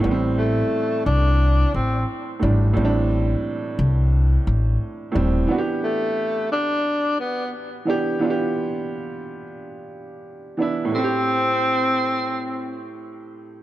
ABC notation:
X:1
M:4/4
L:1/16
Q:"Swing 16ths" 1/4=88
K:Am
V:1 name="Tenor saxophone"
z2 A,4 D4 C2 z4 | z16 | z2 A,4 D4 B,2 z4 | z16 |
C12 z4 |]
V:2 name="Upright piano"
[A,,E,G,B,C]6- [A,,E,G,B,C] z6 z [A,,E,G,D]2 | [A,,E,G,CD]6- [A,,E,G,CD] z6 z [A,,E,G,C]2 | [E,B,D^FG]6- [E,B,DFG] z6 z [E,B,DG]2 | [E,B,DFG]6- [E,B,DFG] z6 z [E,B,DE]2 |
[A,,A,CG]16 |]
V:3 name="Upright bass" clef=bass
A,,,4 z2 C,,4 A,,,2 z2 ^G,,,2 | A,,,4 z2 C,,4 A,,,2 z2 ^D,,,2 | z16 | z16 |
z16 |]